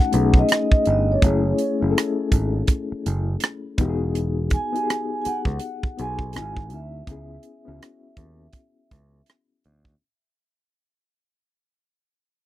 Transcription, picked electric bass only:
0.14 B1
0.87 G1
1.23 F#1
1.82 F#1
2.33 G#1
2.92 muted picked electric bass stroke
3.07 F#1
3.79 E1
5.26 muted picked electric bass stroke
5.46 C#2
5.84 muted picked electric bass stroke
5.99 B1
6.36 G#1
6.73 D2
7.08 C#2
7.68 C#2
8.18 D#2
8.92 C#2
9.66 D2

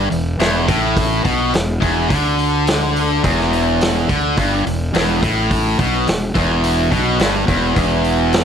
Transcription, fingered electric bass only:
Already playing: G1
0.12 E1
0.40 E1
0.68 A1
1.25 B1
1.55 E1
1.82 E1
2.10 D2
3.24 E1
4.09 D2
4.38 G1
4.67 E1
4.95 E1
5.23 A1
5.79 B1
6.08 E1
6.35 E1
6.92 B1
7.20 G1
7.49 E1
7.77 E1

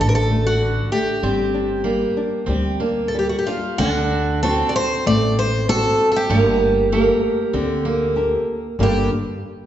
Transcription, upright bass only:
0.00 A1
1.23 G1
2.48 D2
3.79 D2
5.06 A1
6.30 G1
7.54 D2
8.79 G1

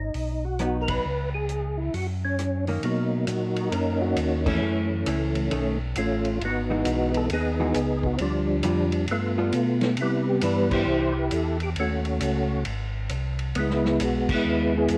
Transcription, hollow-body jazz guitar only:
0.60 F#3 B3 D#4
2.68 D#3 A#3 C#4
4.46 E3 A3 C#4
4.62 E3 A3 C#4
5.07 E3 A3 C#4
5.51 D#3 A3 C#4
6.70 E3 G#3 D#4 F#4
7.60 E3 G#3 D#4 F#4
8.64 D3 G3 C4 F4
9.38 G3 B3 F4 A4
10.43 E3 D4
13.56 B3

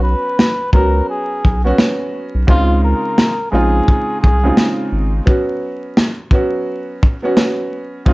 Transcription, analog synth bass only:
Already playing: B1
0.73 C#2
1.45 B1
2.35 B1
2.48 C#2
3.53 A#1
4.24 C2
4.92 G#1

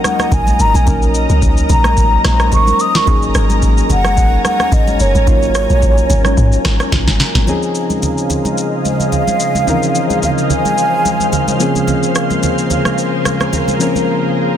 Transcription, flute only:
0.06 F#5
0.34 G#5
0.61 A#5
0.76 G#5
1.71 A#5
2.26 A#5
2.54 C#6
2.81 D#6
2.96 C#6
3.91 F#5
4.46 F#5
4.74 D#5
5.01 C#5
9.14 F5
10.24 F5
10.51 G#5

